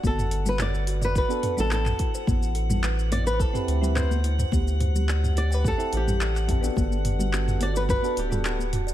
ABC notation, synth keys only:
X:1
M:4/4
L:1/16
Q:1/4=107
K:G
V:1 name="Synth keys"
z8 z [B,DFA]2 [B,DFA]2 z3 | z8 z [CEGB]2 [CEGB]2 z3 | z8 z [CEGA]2 z3 [CEGA] [B,DFA]- | [B,DFA]8- [B,DFA] [B,DFA]2 [B,DFA]2 z3 |]